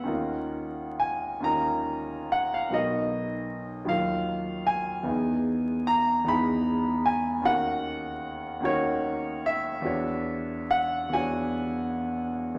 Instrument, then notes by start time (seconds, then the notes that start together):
grand piano
Already playing: B4 D#5 E5 F#5 G#5
0.03 D#2 C#4 D#4 F4
0.08 A#4
1.00 G#5
1.40 D#2 C#4 D#4 F4 A#5
1.46 A#4
2.32 F#5
2.54 F5
2.70 B1 B3 D#4 F#4 D#5
2.75 A#4
3.85 D#2 F#3 D#4 F4
3.89 A#4 F5
4.67 G#5
5.03 E2 B3 D#4 E4
5.08 G#4
5.87 A#5
6.24 E2 B3 D#4 E4
6.28 G#4 B5
7.06 G#5
7.42 D#2 C#4 D#4 F#4 F#5
7.47 A#4
8.60 D#2 C#4 D#4 F#4
8.65 A#4 C#5
9.46 E5
9.82 E2 B3 D4 F#4
9.86 C#5
10.71 F#5
11.09 E2 B3 D4
11.13 F#4 C#5 G#5
12.54 E2